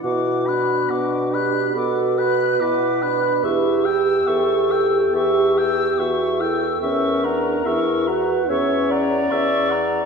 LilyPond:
<<
  \new Staff \with { instrumentName = "Flute" } { \time 4/4 \key b \minor \tempo 4 = 71 d'''8 fis'''8 d'''8 fis'''8 d'''8 fis'''8 d'''8 fis'''8 | cis'''8 e'''8 cis'''8 e'''8 cis'''8 e'''8 cis'''8 e'''8 | cis'''8 ais''8 cis'''8 ais''8 cis'''8 ais''8 cis'''8 ais''8 | }
  \new Staff \with { instrumentName = "Oboe" } { \time 4/4 \key b \minor fis''8 b''8 fis''8 b''8 fis''8 b''8 fis''8 b''8 | e''8 g''8 e''8 g''8 e''8 g''8 e''8 g''8 | e''8 fis''8 e''8 fis''8 e''8 fis''8 e''8 fis''8 | }
  \new Staff \with { instrumentName = "Clarinet" } { \time 4/4 \key b \minor fis'4. g'8 a'8 b'4. | g'4 a'4 g'4 r8 a'8 | ais'4. b'8 cis''8 d''4. | }
  \new Staff \with { instrumentName = "French horn" } { \time 4/4 \key b \minor e'8 d'4. fis'4 e'8 d'8 | e'8 g'2~ g'8 fis'8 e'8 | cis'8 d'8 e'8 fis'8 cis'4. r8 | }
  \new Staff \with { instrumentName = "Bassoon" } { \clef bass \time 4/4 \key b \minor b,4 b,4 b,4 b,4 | e,4 e,4 e,4 e,4 | e,4 e,4 e,4 e,4 | }
>>